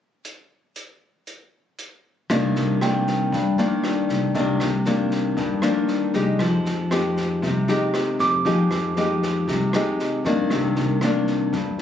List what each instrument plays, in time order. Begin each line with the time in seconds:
0.25 closed hi-hat
0.76 closed hi-hat
1.27 closed hi-hat
1.79 closed hi-hat
2.30 upright bass C2, nylon-string guitar C3 D#3 A#3 D4, kick, cross-stick, snare
2.56 upright bass C2, snare
2.81 nylon-string guitar D#3 A#3 D4, tine electric piano G5, cross-stick, snare
3.07 kick, snare
3.32 nylon-string guitar G2, upright bass G2, kick, snare
3.58 nylon-string guitar D#3 A#3 D4, snare
3.84 cross-stick, snare
4.09 upright bass C2, kick, snare
4.34 upright bass C2, nylon-string guitar C3 D#3 A#3 D4, kick, snare
4.60 upright bass C2, cross-stick, snare
4.85 nylon-string guitar D#3 A#3 D4, snare
5.11 kick, snare
5.37 nylon-string guitar G2, upright bass G2, kick, snare
5.62 nylon-string guitar D#3 A#3 D4, cross-stick, snare
5.88 snare
6.14 upright bass C2, nylon-string guitar G#3 D#4 G4, kick, snare
6.39 upright bass F2, nylon-string guitar F3, kick, cross-stick, snare
6.65 upright bass F2, snare
6.91 nylon-string guitar G#3 D#4 G4, cross-stick, snare
7.17 kick, snare
7.42 upright bass C2, nylon-string guitar C3, kick, snare
7.68 nylon-string guitar G#3 D#4 G4, snare
7.94 cross-stick, snare
8.19 upright bass F2, tine electric piano D6, kick, snare
8.45 upright bass F2, nylon-string guitar F3 G#3 D#4 G4, kick, snare
8.71 upright bass F2, cross-stick, snare
8.96 nylon-string guitar G#3 D#4 G4, snare
9.22 kick, snare
9.48 upright bass C2, nylon-string guitar C3, kick, snare
9.73 nylon-string guitar G#3 D#4 G4, cross-stick, snare
9.99 snare
10.25 upright bass G2, nylon-string guitar D#3 A#3 D4, kick, snare
10.50 upright bass C2, nylon-string guitar C3, kick, cross-stick, snare
10.76 upright bass C2, snare
11.01 nylon-string guitar D#3 A#3 D4, cross-stick, snare
11.27 kick, snare
11.53 upright bass G2, nylon-string guitar G2, kick, snare
11.78 snare